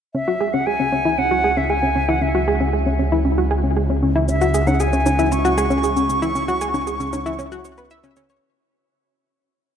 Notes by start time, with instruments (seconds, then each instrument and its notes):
0.15 analog synth bass C#2, synth arpeggio sound C#4, flute E5
0.28 synth arpeggio sound F#4
0.41 synth arpeggio sound G#4
0.53 synth arpeggio sound C#4, flute F#5
0.66 synth arpeggio sound G#4, flute G#5
0.80 synth arpeggio sound C#4
0.92 synth arpeggio sound C#4
1.05 synth arpeggio sound E4
1.18 synth arpeggio sound C#4, flute F#5
1.31 synth arpeggio sound F#4
1.44 synth arpeggio sound G#4
1.57 synth arpeggio sound C#4, flute E5
1.70 synth arpeggio sound G#4, flute G#5
1.83 synth arpeggio sound C#4
1.95 synth arpeggio sound C#4
2.09 synth arpeggio sound E4, flute F#5
2.21 synth arpeggio sound C#4, flute E5
2.35 synth arpeggio sound F#4
2.48 synth arpeggio sound G#4
2.60 synth arpeggio sound C#4
2.73 synth arpeggio sound G#4
2.86 synth arpeggio sound C#4
2.99 synth arpeggio sound C#4
3.12 synth arpeggio sound E4
3.25 synth arpeggio sound C#4
3.38 synth arpeggio sound F#4
3.51 synth arpeggio sound G#4
3.64 synth arpeggio sound C#4
3.77 synth arpeggio sound G#4
3.90 synth arpeggio sound C#4
4.03 synth arpeggio sound C#4
4.16 synth arpeggio sound E4
4.28 synth arpeggio sound C#4, flute E5, shaker
4.41 synth arpeggio sound F#4, shaker
4.54 synth arpeggio sound G#4, shaker
4.67 synth arpeggio sound C#4, flute F#5, low bongo, shaker
4.80 synth arpeggio sound G#4, flute G#5, shaker
4.93 synth arpeggio sound C#4, shaker
5.06 synth arpeggio sound C#4, low bongo, shaker
5.19 synth arpeggio sound E4, shaker
5.32 synth arpeggio sound C#4, flute C#6, shaker
5.45 synth arpeggio sound F#4, shaker
5.58 synth arpeggio sound G#4, shaker
5.70 synth arpeggio sound C#4, shaker
5.83 synth arpeggio sound G#4, shaker
5.96 synth arpeggio sound C#4, shaker
6.09 synth arpeggio sound C#4, shaker
6.22 synth arpeggio sound E4, shaker
6.35 synth arpeggio sound C#4, shaker
6.48 synth arpeggio sound F#4, shaker
6.61 synth arpeggio sound G#4, shaker
6.74 synth arpeggio sound C#4, low bongo, shaker
6.87 synth arpeggio sound G#4, shaker
7.00 synth arpeggio sound C#4, shaker
7.13 synth arpeggio sound C#4, low bongo, shaker
7.26 synth arpeggio sound E4, shaker
7.39 synth arpeggio sound C#4, shaker
7.52 synth arpeggio sound F#4, shaker
7.65 synth arpeggio sound C#5, shaker
7.78 synth arpeggio sound B4, shaker
7.90 synth arpeggio sound E5, shaker
8.04 synth arpeggio sound C#4, shaker
8.16 synth arpeggio sound C#4, shaker
8.29 synth arpeggio sound C#5, shaker